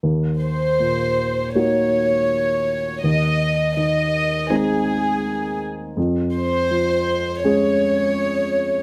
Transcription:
<<
  \new Staff \with { instrumentName = "Violin section" } { \time 4/4 \key ees \dorian \tempo 4 = 82 r8 c''4. des''2 | ees''4 ees''4 aes'4. r8 | r8 c''4. des''2 | }
  \new Staff \with { instrumentName = "Upright piano" } { \clef bass \time 4/4 \key ees \dorian ees,4 bes,4 <bes ees' ges'>2 | ees,4 ees4 <aes c' ees'>2 | f,4 f4 <aes des' aes'>2 | }
>>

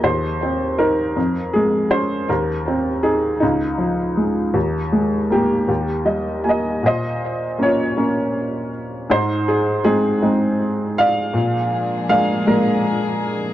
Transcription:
<<
  \new Staff \with { instrumentName = "Upright piano" } { \time 6/8 \key bes \dorian \tempo 4. = 53 << { c''4 bes'4 aes'8 c''8 | bes'4 aes'8 ees'4.~ | ees'4 g'4 ees''8 <ees'' aes''>8 | ees''4 des''2 |
c''8 aes'8 aes'4. f''8~ | f''4 f''8 bes'4. | } \\ { r2. | r2. | r4 bes4. r8 | c''4 f'2 |
ees'4. r4 d''8~ | d''4 r2 | } >> }
  \new Staff \with { instrumentName = "Upright piano" } { \time 6/8 \key bes \dorian ees,8 c'8 ees'8 f,8 aes8 des'8 | ees,8 c'8 ees'8 des,8 f8 aes8 | ees,8 aes8 bes8 ees,8 g8 bes8 | bes,4 <bes des'>8 <bes des'>4 r8 |
aes,4 <aes c' ees'>8 <aes c' ees'>4 r8 | bes,4 <aes bes d'>8 <aes bes d'>4 r8 | }
  \new Staff \with { instrumentName = "String section" } { \time 6/8 \key bes \dorian r2. | r2. | r2. | r2. |
r2. | <f aes bes d' aes'>2. | }
>>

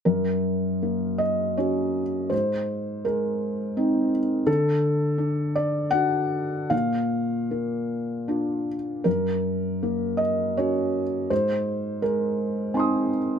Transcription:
\new Staff \with { instrumentName = "Felt piano" } { \time 3/4 \key ges \lydian \tempo 4 = 81 << { ges,4 bes4 <des' ges'>4 | aes,4 aes4 <c' ees'>4 | d4 d'4 <d' fis'>4 | bes,4 bes4 <d' f'>4 |
ges,4 bes4 <des' ges'>4 | aes,4 aes4 <c' ees' aes'' c''' ees'''>4 | } \\ { bes'4. ees''8 des''4 | c''4 bes'4. r8 | a'4. d''8 fis''4 | f''2~ f''8 r8 |
bes'4. ees''8 des''4 | c''4 bes'4. r8 | } >> }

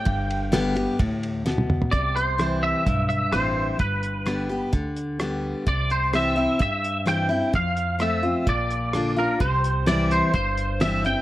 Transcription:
<<
  \new Staff \with { instrumentName = "Clean electric guitar" } { \time 4/4 \key g \major \tempo 4 = 128 g''2. r4 | \key c \major d''8 c''4 e''4 e''8 c''4 | b'2 r2 | d''8 c''8 e''4 e''4 g''4 |
f''4 e''4 d''4. bes'8 | c''4 d''8 c''8 c''4 e''8 g''8 | }
  \new Staff \with { instrumentName = "Steel-string acoustic guitar" } { \time 4/4 \key g \major << { r4 <d g b g'>8 <b g'>8 r2 | \key c \major r4 <e g c' e'>4 r4 <e g c' e'>4 | r4 <d g b g'>8 <b g'>8 r4 <d g b g'>4 | r4 <e g c' e'>8 <c' e'>8 r4 <e g c' e'>8 <c' e'>8 |
r4 <f a c' f'>8 <c' f'>8 r4 <d bes d' f'>8 <d' f'>8 | r4 <e g c' e'>4 r4 <e g c' e'>8 <c' e'>8 | } \\ { g,2 a,4 b,4 | c2 g,2 | g,2 d2 | c2 g,2 |
f,2 bes,2 | c2 g,2 | } >> }
  \new Staff \with { instrumentName = "Upright bass" } { \clef bass \time 4/4 \key g \major g,,2 d,2 | \key c \major c,2 b,,4 a,,4 | g,,2 d,2 | c,2 g,2 |
f,2 bes,,2 | c,2 g,,2 | }
  \new DrumStaff \with { instrumentName = "Drums" } \drummode { \time 4/4 <bd cymr>8 cymr8 <cymr sn>8 cymr8 <bd cymr>8 cymr8 sn16 tommh16 toml16 tomfh16 | <hh bd>8 hh8 <hh ss>4 <hh bd>8 hh8 <hh ss>4 | <hh bd>8 hh8 <hh ss>4 <hh bd>8 hh8 <hh ss>4 | <hh bd>8 hh8 <hh ss>4 <hh bd>8 hh8 <hh ss>4 |
<hh bd>8 hh8 <hh ss>4 <hh bd>8 hh8 <hh ss>4 | <hh bd>8 hh8 <hh sn>8 hh8 <hh bd>8 hh8 <hh sn>8 hh8 | }
>>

